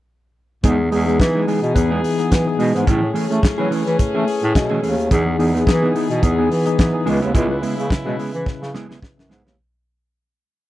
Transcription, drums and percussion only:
0.64 kick, closed hi-hat
0.92 open hi-hat
1.09 closed hi-hat
1.20 kick, snare, closed hi-hat
1.48 open hi-hat
1.64 closed hi-hat
1.76 kick, closed hi-hat
2.04 open hi-hat
2.19 closed hi-hat
2.31 kick, snare, closed hi-hat
2.60 open hi-hat
2.76 closed hi-hat
2.87 kick, closed hi-hat
3.16 open hi-hat
3.32 closed hi-hat
3.43 kick, snare, closed hi-hat
3.72 open hi-hat
3.87 closed hi-hat
3.99 kick, closed hi-hat
4.28 open hi-hat
4.42 closed hi-hat
4.55 kick, snare, closed hi-hat
4.84 open hi-hat
4.99 closed hi-hat
5.11 kick, closed hi-hat
5.40 open hi-hat
5.56 closed hi-hat
5.67 kick, snare, closed hi-hat
5.96 open hi-hat
6.10 closed hi-hat
6.23 kick, closed hi-hat
6.51 open hi-hat
6.66 closed hi-hat
6.79 kick, snare, closed hi-hat
7.07 open hi-hat
7.22 closed hi-hat
7.35 kick, closed hi-hat
7.63 open hi-hat
7.79 closed hi-hat
7.90 kick, snare, closed hi-hat
8.19 open hi-hat
8.34 closed hi-hat
8.46 kick, snare
8.63 snare
8.75 snare
8.91 snare
9.03 kick, snare
9.19 snare
9.31 snare
9.47 snare

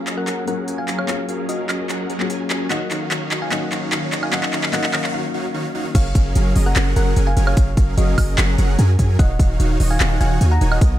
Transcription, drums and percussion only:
0.07 clap, closed hi-hat
0.27 clap, closed hi-hat
0.47 closed hi-hat
0.68 closed hi-hat
0.88 clap, closed hi-hat
0.99 high woodblock
1.08 clap, closed hi-hat
1.29 closed hi-hat
1.49 closed hi-hat
1.69 clap, closed hi-hat, high woodblock
1.89 clap, closed hi-hat
2.10 closed hi-hat
2.20 clap
2.30 closed hi-hat
2.50 clap, closed hi-hat
2.71 clap, closed hi-hat
2.91 clap, closed hi-hat
3.11 clap, closed hi-hat
3.31 clap, closed hi-hat
3.52 clap, closed hi-hat
3.72 clap, closed hi-hat
3.92 clap, closed hi-hat
4.12 clap, closed hi-hat
4.23 high woodblock
4.33 clap, closed hi-hat
4.43 clap
4.53 clap, closed hi-hat
4.63 clap
4.73 clap, closed hi-hat
4.84 clap
4.93 clap, closed hi-hat, high woodblock
5.04 clap
5.95 kick, closed hi-hat, crash
6.15 kick, closed hi-hat
6.35 closed hi-hat
6.56 open hi-hat
6.76 clap, closed hi-hat
6.96 closed hi-hat
7.16 closed hi-hat
7.37 closed hi-hat
7.47 high woodblock
7.57 kick, closed hi-hat
7.77 kick, closed hi-hat
7.98 closed hi-hat
8.18 kick, open hi-hat, high woodblock
8.38 clap, closed hi-hat
8.58 closed hi-hat
8.79 closed hi-hat
8.99 kick, closed hi-hat
9.19 kick, closed hi-hat
9.39 kick, closed hi-hat
9.60 closed hi-hat
9.80 open hi-hat
10.00 clap, closed hi-hat
10.21 closed hi-hat
10.41 closed hi-hat
10.61 closed hi-hat
10.72 high woodblock
10.81 kick, closed hi-hat

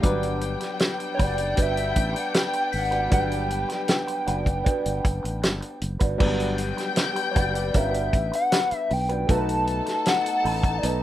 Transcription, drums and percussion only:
0.03 kick, closed hi-hat
0.23 closed hi-hat
0.41 closed hi-hat
0.60 snare, closed hi-hat
0.79 snare, closed hi-hat
1.00 closed hi-hat
1.19 kick, closed hi-hat
1.38 closed hi-hat
1.57 kick, closed hi-hat
1.77 closed hi-hat
1.96 kick, closed hi-hat
2.16 closed hi-hat
2.34 snare, closed hi-hat
2.53 closed hi-hat
2.73 open hi-hat
2.92 closed hi-hat
3.11 kick, closed hi-hat
3.32 closed hi-hat
3.50 closed hi-hat
3.69 snare, closed hi-hat
3.88 snare, closed hi-hat
4.08 closed hi-hat
4.27 closed hi-hat
4.46 kick, closed hi-hat
4.66 kick, closed hi-hat
4.86 closed hi-hat
5.05 kick, closed hi-hat
5.25 closed hi-hat
5.43 snare, closed hi-hat
5.62 closed hi-hat
5.82 closed hi-hat
6.00 kick, closed hi-hat
6.20 kick, crash
6.40 closed hi-hat
6.58 closed hi-hat
6.78 snare, closed hi-hat
6.96 snare, closed hi-hat
7.16 closed hi-hat
7.36 kick, closed hi-hat
7.55 closed hi-hat
7.74 kick, closed hi-hat
7.94 closed hi-hat
8.13 kick, closed hi-hat
8.33 closed hi-hat
8.52 snare, closed hi-hat
8.71 closed hi-hat
8.90 open hi-hat
9.09 closed hi-hat
9.29 kick, closed hi-hat
9.49 closed hi-hat
9.67 closed hi-hat
9.86 snare, closed hi-hat
10.06 snare, closed hi-hat
10.26 closed hi-hat
10.45 open hi-hat
10.63 kick, closed hi-hat
10.83 closed hi-hat

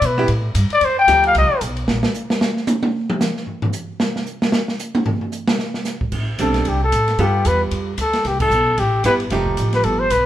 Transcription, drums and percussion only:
0.02 kick, hi-hat pedal, ride
0.28 ride
0.55 kick, hi-hat pedal, ride
0.70 ride
0.81 kick, ride
1.08 kick, hi-hat pedal, ride
1.24 ride
1.35 kick, ride
1.61 kick, hi-hat pedal, ride
1.76 ride
1.88 snare
2.03 snare
2.14 hi-hat pedal
2.30 snare
2.41 snare
2.57 snare
2.67 hi-hat pedal, high tom
2.83 high tom
3.10 mid tom
3.20 snare, hi-hat pedal
3.36 snare
3.47 floor tom
3.62 floor tom
3.73 hi-hat pedal
4.00 snare
4.16 snare
4.26 hi-hat pedal
4.42 snare
4.52 snare
4.68 snare
4.79 hi-hat pedal
4.95 high tom
5.06 floor tom
5.21 floor tom
5.32 hi-hat pedal
5.48 snare
5.59 snare
5.74 snare
5.85 snare, hi-hat pedal
6.01 kick
6.12 kick, crash
6.38 kick, hi-hat pedal, ride
6.54 snare, ride
6.65 kick, ride
6.92 kick, hi-hat pedal, ride
7.08 snare, ride
7.18 kick, ride
7.45 kick, hi-hat pedal, ride
7.71 kick, ride
7.98 kick, hi-hat pedal, ride
8.13 snare, ride
8.25 kick, snare, ride
8.40 kick, crash
8.51 hi-hat pedal
8.78 kick, ride
9.04 kick, hi-hat pedal, ride
9.20 ride
9.30 kick, snare, ride
9.46 kick
9.57 kick, hi-hat pedal, ride
9.73 snare, ride
9.83 kick, ride
10.10 kick, hi-hat pedal, ride

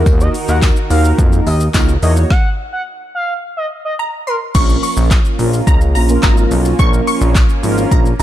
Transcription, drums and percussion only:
0.06 kick, closed hi-hat, tambourine, shaker
0.20 shaker
0.34 open hi-hat, shaker
0.48 shaker
0.62 kick, snare, clap, closed hi-hat, tambourine, shaker
0.76 shaker
0.90 open hi-hat, tambourine, shaker
1.05 shaker
1.18 kick, closed hi-hat, shaker
1.33 shaker
1.47 open hi-hat, tambourine, shaker
1.60 shaker
1.74 kick, snare, clap, closed hi-hat, tambourine, shaker
1.89 shaker
2.03 open hi-hat, tambourine, shaker
2.16 shaker
2.30 kick, snare
4.55 kick, closed hi-hat, crash, shaker
4.69 shaker
4.83 open hi-hat, shaker
4.97 shaker
5.11 kick, snare, clap, closed hi-hat, shaker
5.25 shaker
5.39 open hi-hat, shaker
5.53 shaker
5.67 kick, closed hi-hat, shaker
5.81 shaker
5.95 open hi-hat, shaker
6.09 shaker
6.23 kick, snare, clap, closed hi-hat, shaker
6.37 shaker
6.51 open hi-hat, shaker
6.65 shaker
6.79 kick, closed hi-hat, shaker
6.93 shaker
7.07 open hi-hat, shaker
7.21 shaker
7.35 kick, snare, clap, closed hi-hat, shaker
7.49 shaker
7.64 open hi-hat, shaker
7.78 shaker
7.91 kick, closed hi-hat, shaker
8.05 shaker
8.20 open hi-hat, shaker

